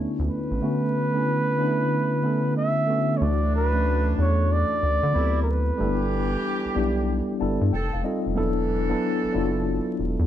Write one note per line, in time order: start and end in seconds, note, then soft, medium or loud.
0.00 0.61 D3 medium
0.00 0.62 A3 medium
0.00 0.62 B3 medium
0.00 0.63 C#4 medium
0.00 0.64 D4 medium
0.00 0.64 D#4 medium
0.00 0.49 E4 medium
0.00 0.64 F#4 medium
0.00 0.64 A4 medium
0.19 0.29 D2 medium
0.30 2.52 B4 loud
0.51 0.61 A1 medium
0.61 1.01 D3 medium
0.61 1.01 A3 medium
0.61 1.02 B3 medium
0.61 1.02 C#4 medium
0.61 1.02 F#4 medium
1.14 1.51 D3 medium
1.14 1.51 A3 medium
1.14 1.51 B3 medium
1.14 1.52 C#4 medium
1.14 1.52 E4 medium
1.57 2.12 D3 medium
1.57 2.13 A3 medium
1.57 2.13 B3 medium
1.57 2.13 C#4 medium
1.57 1.68 D4 medium
1.67 2.17 E4 medium
2.22 2.77 D3 medium
2.22 2.77 A3 medium
2.22 2.78 B3 medium
2.22 2.78 C#4 medium
2.22 2.79 A4 medium
2.57 3.19 E5 medium
2.87 3.15 D3 medium
2.87 3.15 A3 medium
2.87 3.15 B3 medium
2.87 3.16 C#4 medium
2.87 3.16 F#4 medium
3.17 4.13 D2 loud
3.17 4.78 A2 medium
3.17 3.59 E3 medium
3.17 4.78 F#3 medium
3.17 3.59 A3 medium
3.17 4.78 D4 medium
3.17 3.24 C#5 medium
3.21 3.60 D4 medium
3.21 3.61 F#4 loud
3.21 3.54 D5 medium
3.56 4.15 B4 loud
3.72 4.09 E3 medium
3.72 4.09 A3 medium
3.72 4.10 C#4 medium
3.72 4.10 D4 medium
3.72 4.10 F#4 medium
4.16 4.64 E2 medium
4.16 5.13 E3 medium
4.16 5.13 A3 medium
4.16 5.14 D4 medium
4.16 5.14 A4 medium
4.21 4.54 C#5 medium
4.52 5.42 D5 loud
4.83 5.00 D2 medium
5.03 5.13 D3 loud
5.12 5.72 D2 loud
5.12 5.46 C3 medium
5.12 5.68 F#3 medium
5.12 5.69 B3 medium
5.12 5.46 B3 medium
5.12 5.69 C4 medium
5.12 5.46 E4 medium
5.12 5.69 E4 medium
5.12 5.70 A4 medium
5.43 5.52 A#4 medium
5.51 6.45 B4 medium
5.77 6.36 G1 loud
5.77 7.36 E3 medium
5.77 6.57 G3 medium
5.77 5.86 A3 medium
5.77 7.36 D4 medium
5.77 6.58 D4 medium
5.77 6.58 E4 medium
5.77 7.36 G4 medium
5.77 6.58 A4 medium
5.85 6.60 B3 medium
6.65 6.69 B1 soft
6.75 7.22 B1 medium
6.75 7.29 G3 medium
6.75 7.29 B3 medium
6.75 7.30 D4 medium
6.75 7.30 E4 medium
6.75 7.30 G4 loud
7.39 7.58 G1 medium
7.39 7.72 G3 medium
7.39 7.72 B3 medium
7.39 7.72 D4 medium
7.39 7.73 E4 medium
7.39 7.73 A4 loud
7.39 7.70 A5 medium
7.61 7.71 G2 medium
7.73 7.90 F1 loud
7.73 8.04 D#3 medium
7.73 8.04 C4 medium
7.73 8.04 A4 medium
7.73 7.91 G5 medium
7.93 8.04 F1 medium
7.93 8.04 F5 medium
8.03 8.31 G3 medium
8.03 8.31 C4 medium
8.03 8.31 D#4 medium
8.03 8.32 F4 medium
8.03 8.32 A4 medium
8.03 8.34 D#5 medium
8.26 8.36 F1 medium
8.35 8.94 E1 loud
8.35 9.95 E3 medium
8.35 8.75 F#3 loud
8.35 8.75 B3 loud
8.35 8.76 D4 medium
8.35 9.95 D4 medium
8.35 8.76 E4 loud
8.35 9.95 A4 medium
8.35 8.76 A4 loud
8.88 9.25 F#3 medium
8.88 9.26 B3 medium
8.88 9.26 D4 medium
8.88 9.26 E4 medium
8.88 9.26 A4 loud
9.24 9.28 F#1 soft
9.32 9.81 F#1 medium
9.32 10.27 F#3 medium
9.32 10.27 B3 medium
9.32 10.27 D4 medium
9.32 10.27 E4 medium
9.32 9.42 F4 medium
9.42 10.27 F#4 medium
9.99 10.16 E1 medium
10.19 10.27 E2 medium